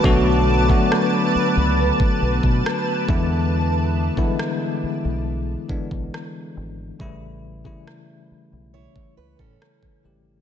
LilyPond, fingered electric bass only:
\new Staff \with { instrumentName = "Fingered electric bass" } { \clef bass \time 4/4 \key e \dorian \tempo 4 = 69 b,,4 r8. cis,8 r16 b,,16 b,16 r8 e,8~ | e,4 r8. b,,8. r16 b,,16 r8 gis,,8 | a,,4 r8. b,,8 r16 cis,16 a,16 r8 gis,,8 | }